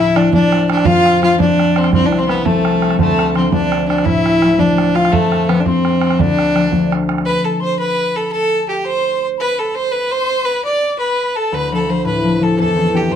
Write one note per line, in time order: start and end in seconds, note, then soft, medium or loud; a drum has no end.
0.00 0.91 D2 medium
0.00 0.91 A2 medium
0.00 0.14 F3 soft
0.00 0.16 A3 soft
0.00 0.14 C4 soft
0.00 0.16 D4 medium
0.00 0.18 E4 loud
0.00 0.74 F4 medium
0.00 0.18 E5 loud
0.15 0.31 F3 soft
0.15 0.33 A3 soft
0.15 0.33 D4 loud
0.15 0.33 D4 medium
0.15 0.33 D5 medium
0.15 bodhran medium
0.32 0.91 F3 medium
0.32 1.22 A3 soft
0.32 3.13 D4 medium
0.32 0.67 D4 loud
0.32 0.67 D5 medium
0.32 bodhran medium
0.52 bodhran medium
0.70 0.87 D4 loud
0.70 0.88 D5 medium
0.70 bodhran medium
0.77 bodhran medium
0.85 1.98 F2 medium
0.85 1.22 F4 loud
0.85 1.22 F5 medium
0.85 bodhran medium
1.06 bodhran medium
1.22 1.38 F3 soft
1.22 1.39 A3 soft
1.22 1.39 C4 medium
1.22 1.39 F4 loud
1.22 1.42 F5 medium
1.22 bodhran medium
1.39 2.27 F3 medium
1.39 2.28 A3 soft
1.39 2.29 C4 medium
1.39 1.79 D4 loud
1.39 1.79 D5 medium
1.39 bodhran medium
1.59 bodhran medium
1.76 1.93 C4 medium
1.76 1.93 C6 medium
1.76 bodhran medium
1.84 bodhran medium
1.93 3.04 C2 medium
1.93 2.07 C4 loud
1.93 2.05 C6 medium
1.93 bodhran medium
2.06 2.21 D4 medium
2.12 bodhran soft
2.18 2.28 C4 loud
2.18 2.31 C6 medium
2.28 2.43 F3 soft
2.28 2.45 A3 soft
2.28 2.47 B3 medium
2.28 2.46 C4 medium
2.28 2.44 B5 medium
2.28 bodhran medium
2.45 3.04 F3 soft
2.45 2.99 A3 medium
2.45 3.35 A3 soft
2.45 5.46 C4 medium
2.45 2.95 A5 medium
2.45 bodhran medium
2.65 bodhran medium
2.82 bodhran medium
2.90 bodhran medium
2.98 5.17 D2 medium
2.98 3.34 A3 loud
2.98 3.37 A5 medium
2.98 bodhran medium
3.19 bodhran medium
3.35 3.50 F3 soft
3.35 3.53 A3 soft
3.35 3.52 C4 medium
3.35 3.56 D4 soft
3.35 3.54 C6 medium
3.35 bodhran medium
3.50 4.41 F3 medium
3.50 4.42 A3 soft
3.50 3.86 D4 loud
3.50 3.87 D5 medium
3.50 bodhran medium
3.56 4.42 D4 medium
3.72 bodhran medium
3.88 4.07 D4 medium
3.88 4.07 D5 medium
3.88 bodhran medium
3.98 bodhran medium
4.05 5.17 A2 medium
4.05 4.61 E4 loud
4.05 4.52 E5 medium
4.05 bodhran medium
4.26 bodhran medium
4.42 4.57 F3 soft
4.42 4.58 A3 soft
4.42 4.58 D4 medium
4.42 bodhran medium
4.52 4.61 E5 medium
4.58 5.17 F3 medium
4.58 5.48 A3 soft
4.58 6.55 D4 medium
4.58 4.97 D4 loud
4.58 4.98 D5 medium
4.58 bodhran medium
4.78 bodhran medium
4.95 5.14 F4 loud
4.95 5.15 F5 medium
4.95 bodhran medium
5.05 bodhran medium
5.12 6.24 F2 medium
5.12 5.50 A3 loud
5.12 5.43 A5 medium
5.12 bodhran medium
5.32 bodhran soft
5.48 5.64 F3 soft
5.48 5.65 A3 soft
5.48 5.62 B3 medium
5.48 5.66 C4 soft
5.48 bodhran medium
5.60 5.67 D4 medium
5.65 6.24 F3 medium
5.65 6.55 A3 soft
5.65 6.21 C4 medium
5.65 8.66 C4 medium
5.65 6.21 C6 medium
5.65 bodhran medium
5.85 bodhran medium
6.01 bodhran medium
6.10 bodhran medium
6.19 7.30 D2 medium
6.19 6.92 D4 loud
6.19 6.92 D5 medium
6.19 bodhran medium
6.39 bodhran medium
6.55 6.70 F3 soft
6.55 6.71 A3 soft
6.55 6.72 D4 medium
6.55 bodhran medium
6.71 7.30 F3 soft
6.71 10.04 A3 soft
6.71 9.52 D4 soft
6.71 bodhran medium
6.92 bodhran medium
7.09 bodhran medium
7.18 bodhran medium
7.25 7.46 B4 loud
7.25 7.46 B5 medium
7.44 7.61 A4 medium
7.44 7.61 A5 medium
7.60 7.77 C5 medium
7.60 7.79 C6 medium
7.78 8.17 B4 loud
7.78 8.33 B5 medium
8.16 8.32 A4 medium
8.31 8.66 A4 loud
8.31 8.70 A5 medium
8.68 8.87 G4 medium
8.68 8.86 G5 medium
8.84 9.26 C5 loud
8.84 9.25 C6 medium
9.38 9.60 B4 loud
9.38 9.76 B5 medium
9.59 9.77 A4 medium
9.74 9.93 C5 loud
9.74 9.92 C6 medium
9.91 10.13 B4 loud
9.91 10.12 B5 medium
10.11 10.46 C5 loud
10.11 10.47 C6 loud
10.45 10.64 B4 loud
10.45 10.64 B5 medium
10.64 10.96 D5 loud
10.64 11.00 D6 medium
10.99 11.38 B4 loud
10.99 11.37 B5 medium
11.35 11.56 A4 medium
11.35 11.54 A5 medium
11.52 12.63 D2 medium
11.52 11.72 B4 loud
11.52 12.04 B5 medium
11.72 11.87 F3 soft
11.72 11.88 A3 soft
11.72 11.89 D4 medium
11.72 11.92 A4 medium
11.88 12.22 F3 soft
11.88 12.23 A3 soft
11.88 12.24 D4 soft
11.88 12.06 C5 medium
12.04 12.63 A2 medium
12.04 12.45 B4 medium
12.04 12.38 B5 medium
12.23 12.39 F3 soft
12.23 12.40 A3 soft
12.23 12.41 D4 soft
12.40 12.63 F3 soft
12.40 13.16 A3 soft
12.40 12.76 D4 medium
12.40 12.59 A4 loud
12.40 12.57 A5 medium
12.57 13.09 E2 medium
12.57 12.98 A4 loud
12.57 12.96 A5 medium
12.76 12.91 E3 soft
12.76 12.92 C4 soft
12.76 12.93 D4 soft
12.93 13.16 E3 soft
12.93 13.16 C4 soft
12.93 13.16 D4 medium
12.93 13.13 G4 medium
12.93 13.13 G5 medium
13.10 13.16 E2 medium
13.10 13.16 C5 loud
13.10 13.16 C6 medium